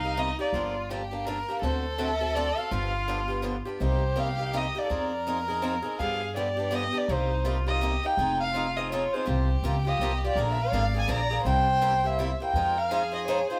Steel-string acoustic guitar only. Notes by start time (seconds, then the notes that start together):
0.03 A#3 D#4 G4
0.17 C3 G3 A#3 D#4 G4
0.39 A#3 D#4 G4
0.54 D3 F3 A#3 D4 G4
0.90 D3 F3 A#3 D4 G4
1.11 A#3 D4 G4
1.27 D3 F3 A#3 D4 G4
1.48 A#3 D4 G4
1.63 D3 A3 C4 F#4 A4
1.98 D3 A3 C4 F#4 A4
2.20 C4 F#4 A4
2.36 D3 A3 C4 F#4 A4
2.57 C4 F#4 A4
2.71 D3 F3 B3 D4 G4
3.08 D3 F3 B3 D4 G4
3.28 B3 D4 G4
3.42 D3 F3 B3 D4 G4
3.65 B3 D4 G4
3.80 C3 G3 A#3 D#4 G4
4.16 C3 G3 A#3 D#4 G4
4.38 A#3 D#4 G4
4.53 C3 G3 A#3 D#4 G4
4.75 A#3 D#4 G4
4.89 F3 C4 D#4 G#4
5.27 F3 C4 D#4 G#4
5.48 C4 D#4 G#4
5.62 F3 C4 D#4 G#4
5.82 C4 D#4 G#4
5.99 D3 F3 B3 D4 G4
6.36 D3 F3 B3 D4 G4
6.57 B3 D4 G4
6.71 D3 F3 B3 D4 G4
6.93 B3 D4 G4
7.09 C3 G3 A#3 D#4 G4
7.45 C3 G3 A#3 D#4 G4
7.66 A#3 D#4 G4
7.81 C3 G3 A#3 D#4 G4
8.04 A#3 D#4 G4
8.18 F3 C4 D#4 G#4
8.54 F3 C4 D#4 G#4
8.77 C4 D#4 G#4
8.92 F3 C4 D#4 G#4
9.14 C4 D#4 G#4
9.26 C3 F3 A#3 F4 G4
9.64 C3 F3 A#3 F4 G4
9.85 A#3 F4 G4
10.01 C3 F3 A#3 F4 G4
10.24 A#3 F4 G4
10.37 D3 F3 A#3 D4 G#4
10.73 D3 F3 A#3 D4 G#4
10.94 A#3 D4 G#4
11.08 D3 F3 A#3 D4 G#4
11.30 A#3 D4 G#4
11.45 C3 G3 A#3 E4 G4
11.81 C3 G3 A#3 E4 G4
12.04 A#3 E4 G4
12.19 C3 G3 A#3 E4 G4
12.40 A#3 E4 G4
12.56 F3 G#3 D#4 F4 C5
12.91 F3 G#3 D#4 F4 C5
13.12 D#4 F4 C5
13.28 F3 G#3 D#4 F4 C5
13.50 D#4 F4 C5